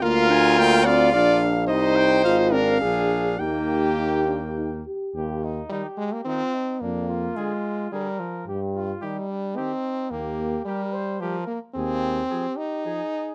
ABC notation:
X:1
M:3/4
L:1/16
Q:1/4=109
K:Eb
V:1 name="Trumpet"
f2 a2 g2 f6 | e2 g2 f2 f6 | g8- g2 z2 | z4 E4 E4 |
z4 A4 A4 | z4 G4 G4 | z4 G4 G4 | z4 A4 A4 |]
V:2 name="Flugelhorn"
B6 F2 F2 z2 | E6 D2 D4 | B,8- B,2 z2 | G2 E2 G4 F2 E2 |
D2 F6 B4 | G2 F2 E2 D2 E4 | G4 B2 c2 B2 z2 | A4 G4 A4 |]
V:3 name="Euphonium"
B,2 D2 B,2 C2 D4 | E4 F2 C2 D4 | E4 E2 D2 E2 G2 | z4 E,4 E,4 |
z4 D,4 D,4 | z4 E,4 E,4 | z4 G,4 G,4 | z4 F,4 F,4 |]
V:4 name="French horn"
F6 d2 d2 z2 | c6 B2 A4 | G8- G2 z2 | z4 G,2 A, B, C4 |
B,4 A,4 G,2 F,2 | z4 G,4 C4 | B,4 G,4 F,2 B,2 | C6 E6 |]
V:5 name="Bass trombone" clef=bass
D,,8 B,,,4 | C,,4 A,,,4 B,,,4 | E,,8- E,,2 z2 | E,,4 z8 |
F,,4 z8 | G,,4 z8 | E,,4 z8 | E,,4 z8 |]